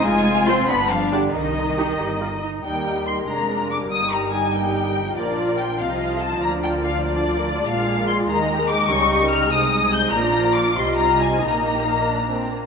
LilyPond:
<<
  \new Staff \with { instrumentName = "Violin section" } { \time 6/8 \key c \minor \tempo 4. = 95 aes''4 c'''8 b''8 f''8 d''8 | ees''2~ ees''8 r8 | \key ees \major g''4 c'''8 bes''4 d'''8 | ees'''8 bes''8 aes''8 g''4. |
d''4 g''8 f''4 a''8 | bes''8 g''8 f''8 d''4. | f''4 c'''8 bes''4 d'''8 | des'''4 f'''8 ees'''4 g'''8 |
bes''4 d'''8 c'''8 bes''8 aes''8 | bes''2~ bes''8 r8 | }
  \new Staff \with { instrumentName = "Viola section" } { \time 6/8 \key c \minor << { r4 c''16 r4 r16 g'16 r16 | r4 g'16 r16 g'8 f'8 ees'8 | \key ees \major ees'4. d'4. | ees'2. |
f'2.~ | f'2. | f'4. ees'4.~ | ees'2. |
f'2. | ees'4. d'4 r8 | } \\ { r4 f'16 r4 r16 d'16 r16 | r4 ees'16 r4. r16 | g4. aes4. | g2. |
f2.~ | f2. | aes2. | g4. aes4. |
f4. g4. | bes2~ bes8 r8 | } >> }
  \new Staff \with { instrumentName = "Violin section" } { \time 6/8 \key c \minor << { f'4. d'4. | ees'2~ ees'16 r8. | \key ees \major bes'2.~ | bes'2. |
bes'4. ees''4. | d''2.~ | d''4. ees''4.~ | ees''2. |
d''4. ees''4.~ | ees''4. d'8 c'8 bes8 | } \\ { r2. | r2. | g16 bes16 ees'16 g'16 ees'16 bes16 aes16 bes16 d'16 f'16 d'16 bes16 | bes16 ees'16 g'16 bes'16 g'16 ees'16 bes16 ees'16 g'16 bes'16 g'16 ees'16 |
bes16 d'16 f'16 bes'16 f'16 d'16 c'16 ees'16 f'16 a'16 f'16 ees'16 | bes16 d'16 f'16 bes'16 f'16 d'16 bes16 d'16 f'16 bes'16 f'16 d'16 | d'16 f'16 aes'16 bes'16 aes'16 f'16 bes16 ees'16 g'16 bes'16 g'16 ees'16 | des'16 ees'16 g'16 bes'16 g'16 ees'16 aes16 c'16 ees'16 aes'16 ees'16 c'16 |
bes16 d'16 f'16 bes'16 f'16 d'16 g16 c'16 ees'16 g'16 ees'16 c'16 | g16 bes16 ees'16 g'16 ees'16 bes16 r4. | } >> }
  \new Staff \with { instrumentName = "Cello section" } { \clef bass \time 6/8 \key c \minor aes4 c'8 b8 f8 d8 | ees2~ ees8 r8 | \key ees \major ees,4. f,4. | g,2. |
bes,4. c4. | d2. | bes,4. ees4. | des4. c4. |
bes,4. c4. | bes,2~ bes,8 r8 | }
  \new Staff \with { instrumentName = "Double bass section" } { \clef bass \time 6/8 \key c \minor f,,4. g,,4. | c,4. g,,4. | \key ees \major ees,4. f,,4. | g,,2. |
bes,,4. c,4. | d,2. | bes,,4. ees,4. | des,4. c,4. |
bes,,4. c,4. | bes,,2~ bes,,8 r8 | }
>>